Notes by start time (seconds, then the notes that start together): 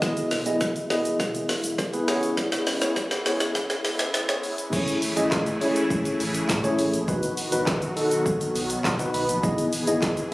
Already playing: B2 D#5
0.02 B1 E3 G#3 B3 E4 G#4 D#5, kick, snare, shaker
0.17 closed hi-hat, shaker
0.31 B1, snare, open hi-hat, shaker
0.46 B3 E4 G#4 D#5, closed hi-hat, shaker
0.61 kick, snare, shaker
0.76 closed hi-hat, shaker
0.90 B1 B3 E4 G#4 D#5, snare, open hi-hat, shaker
1.05 closed hi-hat, shaker
1.20 B2, kick, snare, shaker
1.35 closed hi-hat, shaker
1.49 snare, open hi-hat, shaker
1.64 B1, closed hi-hat, shaker
1.78 B1, kick, snare, shaker
1.93 B3 E4 G#4 B4, closed hi-hat, shaker
2.08 C#2 C#3 B3 E4 G#4 C#5, snare, open hi-hat, shaker
2.23 closed hi-hat, shaker
2.37 kick, snare, shaker
2.52 snare, closed hi-hat, shaker
2.67 C#2, snare, open hi-hat, shaker
2.81 B3 E4 G#4 C#5, snare, closed hi-hat, shaker
2.96 kick, snare, shaker
3.11 snare, closed hi-hat, shaker
3.25 C#2 B3 E4 G#4 C#5, snare, open hi-hat, shaker
3.40 snare, closed hi-hat, shaker
3.55 C#3, kick, snare, shaker
3.70 snare, closed hi-hat, shaker
3.85 snare, open hi-hat, shaker
3.99 C#2, snare, closed hi-hat, shaker
4.14 C#2, snare, shaker
4.28 B3 E4 G#4 C#5, snare, closed hi-hat, shaker
4.43 G#1, open hi-hat, shaker
4.58 closed hi-hat, shaker
4.73 A1 C#3 E3 A3 C#4 E4 G#4 C#5, kick, crash, shaker
4.88 closed hi-hat, shaker
5.02 open hi-hat, shaker
5.17 G#1 A3 C#4 E4 G#4 D#5, closed hi-hat, shaker
5.32 A1, kick, snare, clap, shaker
5.46 closed hi-hat, shaker
5.61 A3 C#4 E4 G#4 C#5, open hi-hat, shaker
5.76 closed hi-hat, shaker
5.90 kick, shaker
6.05 closed hi-hat, shaker
6.20 A1, open hi-hat, shaker
6.34 closed hi-hat, shaker
6.49 A2, kick, snare, clap, shaker
6.64 A3 C#4 E4 G#4 C#5, closed hi-hat, shaker
6.79 A1, open hi-hat, shaker
6.93 A#1, closed hi-hat, shaker
7.08 B1 B2 D#3 F#3 B3 D#4 F#4 B4, kick, shaker
7.23 closed hi-hat, shaker
7.37 open hi-hat, shaker
7.52 G#1 D#4 F#4 B4, closed hi-hat, shaker
7.67 B1, kick, snare, clap, shaker
7.82 closed hi-hat, shaker
7.96 D#4 F#4 A4, open hi-hat, shaker
8.11 closed hi-hat, shaker
8.26 kick, shaker
8.41 closed hi-hat, shaker
8.55 B1, open hi-hat, shaker
8.70 closed hi-hat, shaker
8.84 B2 F#5, kick, snare, clap, shaker
8.99 D#4 F#4 B4, closed hi-hat, shaker
9.14 B1 B5, open hi-hat, shaker
9.28 A#1, closed hi-hat, shaker
9.43 B1 E3 B3 D#4 E4 G#4 D#5, kick, shaker
9.58 closed hi-hat, shaker
9.73 open hi-hat, shaker
9.87 G#1 B3 D#4 E4 G#4 D#5, closed hi-hat, shaker
10.02 B1, kick, snare, clap, shaker
10.17 closed hi-hat, shaker